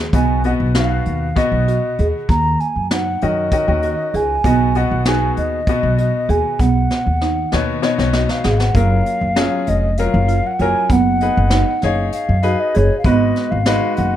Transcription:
0.13 upright bass B1, grand piano B2 B3 F#4 D#5, marimba B3, flute G#5, kick, closed hi-hat
0.44 grand piano B2 B3 F#4 D#5, flute F#5, closed hi-hat
0.60 upright bass B1
0.74 grand piano B2 B3 F#4 F5, marimba D#4, flute F5, snare, closed hi-hat
1.06 upright bass D#2, closed hi-hat
1.36 grand piano B2 B3 F#4 D#5, flute D#5, kick, closed hi-hat
1.52 upright bass B1
1.68 marimba F#4, closed hi-hat
1.98 upright bass D#2, marimba G#4, closed hi-hat
2.29 upright bass D#2, marimba A#3, flute A#5, kick, closed hi-hat
2.60 flute G#5, closed hi-hat
2.76 upright bass F#2
2.91 marimba D#4, flute F#5, snare, closed hi-hat
3.21 upright bass F#2, grand piano D#3 C#4 F#4 D#5, flute D#5, closed hi-hat
3.51 grand piano D#3 C#4 F#4 D#5, kick, closed hi-hat
3.68 upright bass D#2, grand piano D#3 C#4 F#4 D#5
3.82 marimba F#4, closed hi-hat
4.14 upright bass C#2, marimba G#4, flute G#5, closed hi-hat
4.44 upright bass B1, grand piano B2 B3 F#4 D#5, marimba B3, kick, closed hi-hat
4.75 grand piano B2 B3 F#4 D#5, flute F#5, closed hi-hat
4.91 upright bass B1
5.05 grand piano B2 B3 F#4 G#4, marimba D#4, flute G#5, snare, closed hi-hat
5.37 upright bass D#2, flute D#5, closed hi-hat
5.67 grand piano B2 B3 F#4 D#5, kick, closed hi-hat
5.83 upright bass B1
5.98 marimba F#4, closed hi-hat
6.29 upright bass D#2, marimba G#4, flute G#5, closed hi-hat
6.59 upright bass B1, marimba B3, flute F#5, kick, closed hi-hat
6.91 snare
7.06 upright bass D#2
7.21 marimba D#4, snare
7.52 upright bass D#2, grand piano B2 B3 D#4 C#5, snare
7.82 grand piano B2 B3 D#4 C#5, flute D#5, snare
7.98 upright bass B1, grand piano B2 B3 D#4 C#5, snare
8.13 marimba F#4, snare
8.29 flute F5, snare
8.44 upright bass G#1, marimba G#4, flute F#5, snare
8.51 flute F5
8.59 flute F#5, snare
8.74 upright bass F#1, grand piano F#3 C#4 F4 A#4, marimba A#3, flute F5, kick, closed hi-hat
9.06 closed hi-hat
9.21 upright bass F#1
9.36 grand piano F#3 C#4 F4 G#4, marimba C#4, snare, closed hi-hat
9.67 upright bass F1, flute D#5, closed hi-hat
9.97 grand piano F#3 C#4 F4 A#4, flute F5, closed hi-hat
10.14 upright bass F#1
10.28 marimba F4, closed hi-hat
10.47 flute F#5
10.59 upright bass F#1, grand piano F#3 C#4 F4 A#4, marimba F#4, flute G#5, closed hi-hat
10.90 upright bass F#1, marimba B3, flute F#5, kick, closed hi-hat
11.21 grand piano D#4 G#4 B4, closed hi-hat
11.37 upright bass F#1
11.50 marimba D#4, snare, closed hi-hat
11.82 upright bass F#1, grand piano D#4 G#4 C#5, flute F5, snare, closed hi-hat
12.12 flute F5, closed hi-hat
12.29 upright bass F#2
12.43 grand piano D#4 G#4 B4, marimba F#4, closed hi-hat
12.60 flute D#5
12.74 upright bass F#1, marimba G#4, flute C#5, closed hi-hat
12.99 flute F5
13.04 upright bass G#1, grand piano G#3 D#4 F#4 B4, marimba B3, flute D#5, kick, closed hi-hat
13.36 snare, closed hi-hat
13.51 upright bass G#1, flute F5
13.66 grand piano G#3 D#4 F#4 B4, marimba D#4, snare, closed hi-hat
13.97 upright bass F#1, flute F#5, closed hi-hat

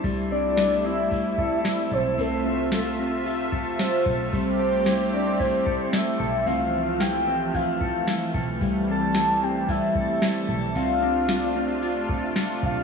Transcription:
Already playing: clean electric guitar E4 A4
0.04 picked electric bass C2, analog synth pad C3 G3 A3 E4, clean electric guitar G3, kick, ride
0.31 clean electric guitar C4, soft synth lead D5
0.57 clean electric guitar D4, snare, ride, tambourine
0.71 clean electric guitar E4
0.84 clean electric guitar C4, soft synth lead E5
1.11 clean electric guitar E4, kick, ride
1.38 clean electric guitar A4, kick
1.65 clean electric guitar E4, snare, ride, tambourine
1.92 picked electric bass B1, clean electric guitar A4, soft synth lead C5
2.18 picked electric bass C2, analog synth pad A3 F4 E5, clean electric guitar C4, soft synth lead A4, ride
2.45 clean electric guitar C4
2.72 clean electric guitar F4, snare, ride, tambourine
2.98 clean electric guitar C4
3.26 clean electric guitar F4, ride
3.52 clean electric guitar A4, kick
3.79 clean electric guitar F4, soft synth lead C5, snare, ride, tambourine
4.06 picked electric bass B1, clean electric guitar A4, kick
4.32 picked electric bass C2, clean electric guitar G3, analog synth pad C4 G4, soft synth lead C5, kick, ride
4.59 clean electric guitar C4
4.86 clean electric guitar E4, snare, ride, tambourine
5.13 clean electric guitar C4, soft synth lead D5
5.40 clean electric guitar E4, soft synth lead C5, kick, ride
5.66 clean electric guitar A4, kick
5.93 clean electric guitar E4, soft synth lead E5, snare, ride, tambourine
6.20 picked electric bass B1, clean electric guitar A4
6.46 picked electric bass C2, analog synth pad E3 F3, clean electric guitar C4, soft synth lead F5, ride
6.73 clean electric guitar C4
7.00 clean electric guitar E4, soft synth lead G5, snare, ride, tambourine
7.27 clean electric guitar C4
7.54 clean electric guitar E4, soft synth lead F5, kick, ride
7.81 clean electric guitar A4, kick
8.08 clean electric guitar E4, snare, ride, tambourine
8.34 picked electric bass B1, clean electric guitar A4, kick
8.61 picked electric bass C2, analog synth pad C3 G3, clean electric guitar G3, kick, ride
8.88 clean electric guitar C4, soft synth lead A5
9.14 clean electric guitar E4, snare, ride, tambourine
9.42 clean electric guitar C4, soft synth lead G5
9.68 clean electric guitar E4, soft synth lead E5, kick, ride
9.95 clean electric guitar A4, kick
10.22 clean electric guitar E4, snare, ride, tambourine
10.48 picked electric bass B1, clean electric guitar A4
10.75 picked electric bass C2, analog synth pad C3 D4 F4, clean electric guitar C4, soft synth lead F5, ride
11.02 clean electric guitar C4
11.28 clean electric guitar F4, snare, ride, tambourine
11.56 clean electric guitar C4
11.83 clean electric guitar F4, ride
12.09 clean electric guitar A4, kick
12.36 clean electric guitar F4, snare, ride, tambourine
12.63 picked electric bass B1, clean electric guitar A4, soft synth lead F5, kick

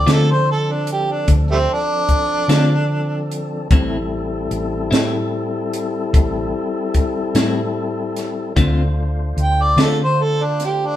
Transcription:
Already playing: tonewheel organ F3 C4 D4 A4
0.06 fingered electric bass D3, clean electric guitar D3 A3 C4 F4, snare, closed hi-hat
0.12 harmonica A4
0.32 harmonica C5
0.52 harmonica A4
0.72 harmonica D4
0.87 closed hi-hat
0.93 harmonica G4
1.12 harmonica D4
1.28 fingered electric bass D2, kick, closed hi-hat
1.51 harmonica G3 A3 C4
1.73 harmonica D4
2.09 kick, closed hi-hat
2.48 fingered electric bass D3, clean electric guitar D3 A3 C4 F4, snare, closed hi-hat
3.31 closed hi-hat
3.70 fingered electric bass A1, clean electric guitar A2 G3 C4 E4, tonewheel organ G3 C4 E4 A4, kick, closed hi-hat
4.51 fingered electric bass A1, closed hi-hat
4.91 fingered electric bass A2, clean electric guitar A2 G3 C4 E4, snare, closed hi-hat
5.74 closed hi-hat
6.13 fingered electric bass A1, kick, closed hi-hat
6.94 kick, closed hi-hat
7.35 fingered electric bass A2, clean electric guitar A2 G3 C4 E4, snare, closed hi-hat
8.16 snare, closed hi-hat
8.55 fingered electric bass D2, clean electric guitar D3 A3 C4 F4, tonewheel organ A3 D4 F4 C5, kick, closed hi-hat
9.37 fingered electric bass D2, closed hi-hat
9.42 harmonica G5
9.62 harmonica D5
9.76 fingered electric bass D3, clean electric guitar D3 A3 C4 F4, snare, closed hi-hat
9.82 harmonica A4
10.04 harmonica C5
10.24 harmonica A4
10.45 harmonica D4
10.60 snare, closed hi-hat
10.65 harmonica G4
10.87 harmonica D4

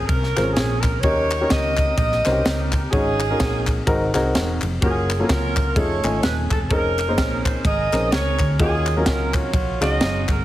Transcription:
0.06 fingered electric bass C2, saxophone section C#4 A#4, kick, ride
0.23 snare
0.36 fingered electric bass G#1, upright piano C4 F4 G#4 A#4 C5, snare, clap, ride
0.42 upright piano C#4
0.53 fingered electric bass A#1, saxophone section G#4, snare, ride
0.80 saxophone section A#4, kick, clap, ride
1.01 fingered electric bass D#2, upright piano D#3 C#4 D#4 G4 A#4 C#5, saxophone section G4 A#4 C#5, kick, ride
1.30 clap, ride
1.41 upright piano C#4 D#4 G4 A#4 C#5
1.50 fingered electric bass C#2, saxophone section G4 A#4 D#5, kick, snare, ride
1.77 kick, clap, ride
1.96 fingered electric bass A#1, saxophone section G4 A#4 D#5, kick, ride
2.12 snare
2.25 fingered electric bass C2, upright piano C#4 D#4 F#4 A#4 C5, snare, clap, ride
2.32 upright piano G4
2.45 fingered electric bass C#2, snare, ride
2.72 kick, clap, ride
2.91 fingered electric bass G#1, upright piano G#2 C#4 D#4 F#4 G#4 C#5, saxophone section C#4 D#4 G#4, kick, ride
3.20 clap, ride
3.30 upright piano C#4 D#4 F#4 G#4 A#4
3.40 fingered electric bass A#1, kick, snare, ride
3.67 kick, clap, ride
3.87 fingered electric bass G#1, upright piano G#2 C4 D#4 F#4 G#4 A#4, kick, ride
4.14 fingered electric bass C2, upright piano C4 D#4 F#4 G#4 A#4, snare, clap, ride
4.35 fingered electric bass E1, snare, ride
4.61 fingered electric bass F1, clap, ride
4.81 fingered electric bass F#1, upright piano A#3 C#4 F4 F#4 A#4, saxophone section C#4 F4 G#4, kick, ride
5.10 clap, ride
5.19 upright piano F#3 A#3 C#4 F4 A4
5.25 saxophone section C#4 A#4, upright piano A#4
5.29 fingered electric bass C#2, saxophone section F4, kick, snare, ride
5.56 kick, clap, ride
5.76 fingered electric bass F1, upright piano A3 C#4 D#4 F4 G#4, saxophone section G#4 A4 C#5, kick, ride
6.03 fingered electric bass G#1, upright piano A3 C#4 D#4 F4 G#5, clap, ride
6.23 fingered electric bass D#1, saxophone section B4, snare, ride
6.50 fingered electric bass E1, saxophone section A4, kick, clap, ride
6.70 fingered electric bass F1, upright piano C4 C#4 D#4 G#4 A#4, saxophone section C#4 D#4 A#4, kick, ride
6.98 clap, ride
7.08 upright piano A#3 C#4 D#4 G#4 C5
7.18 fingered electric bass A#1, kick, snare, ride
7.44 saxophone section C5, kick, clap, ride
7.64 fingered electric bass G#1, saxophone section G#4 A#4 D#5, kick, ride
7.92 fingered electric bass A#1, upright piano C4 C#4 D#4 G#4 A#4, snare, clap, ride
8.12 fingered electric bass C#2, saxophone section G#4 A#4 C#5, snare, ride
8.39 fingered electric bass D2, kick, clap, ride
8.59 fingered electric bass D#2, upright piano D#3 C#4 D#4 F4 F#4 G#4, saxophone section C#4 F4 G#4, kick, ride
8.86 clap, ride
8.97 upright piano F#3 C#4 D#4 F4 A#4
9.06 fingered electric bass C#2, saxophone section A#4, kick, snare, ride
9.34 saxophone section F4 F#4 C#5, kick, clap, ride
9.53 fingered electric bass A#1, kick, ride
9.81 fingered electric bass C#2, upright piano F#3 C#4 D#4 G#4 F5, saxophone section F#4 G#4 D#5, snare, clap, ride
10.01 fingered electric bass F#1, snare, ride
10.28 fingered electric bass G1, saxophone section A#4, kick, clap, ride

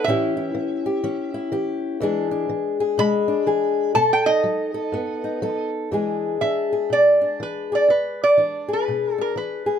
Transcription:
0.04 steel-string acoustic guitar A2 E3, resonator guitar played with a steel bar E5
0.09 steel-string acoustic guitar C#4 E4 G4
0.37 steel-string acoustic guitar E4
0.55 steel-string acoustic guitar E3
0.86 steel-string acoustic guitar G4
1.04 steel-string acoustic guitar E3 C#4
1.34 steel-string acoustic guitar E4
1.52 steel-string acoustic guitar E3 G4
2.00 steel-string acoustic guitar E2 E3 G#3 D4 G#4
2.31 steel-string acoustic guitar D4
2.49 steel-string acoustic guitar E3
2.80 steel-string acoustic guitar G#4
2.98 steel-string acoustic guitar B2 G#3, resonator guitar played with a steel bar B5
3.28 steel-string acoustic guitar D4
3.47 steel-string acoustic guitar E3 G#4
3.95 steel-string acoustic guitar B2 A4, resonator guitar played with a steel bar A5
4.13 resonator guitar played with a steel bar G5
4.26 steel-string acoustic guitar D#4, resonator guitar played with a steel bar D#5
4.44 steel-string acoustic guitar F#3
4.74 steel-string acoustic guitar A4
4.92 steel-string acoustic guitar F#2 B3
5.24 steel-string acoustic guitar D#4
5.42 steel-string acoustic guitar F#3 A4
5.91 steel-string acoustic guitar E2 E3 G#3 D4 G#4
6.41 steel-string acoustic guitar E3 D4, resonator guitar played with a steel bar E5
6.73 steel-string acoustic guitar G#4
6.90 steel-string acoustic guitar B2, resonator guitar played with a steel bar D5
7.21 steel-string acoustic guitar D4
7.40 steel-string acoustic guitar E3, resonator guitar played with a steel bar B4
7.72 steel-string acoustic guitar G#4, resonator guitar played with a steel bar D5
7.88 steel-string acoustic guitar E2, resonator guitar played with a steel bar B4
8.23 resonator guitar played with a steel bar D5
8.37 steel-string acoustic guitar E3 D4
8.68 steel-string acoustic guitar G#4
8.73 resonator guitar played with a steel bar B4
8.88 steel-string acoustic guitar B2
9.18 steel-string acoustic guitar D4, resonator guitar played with a steel bar A#4
9.36 steel-string acoustic guitar E3, resonator guitar played with a steel bar B4
9.66 steel-string acoustic guitar G#4

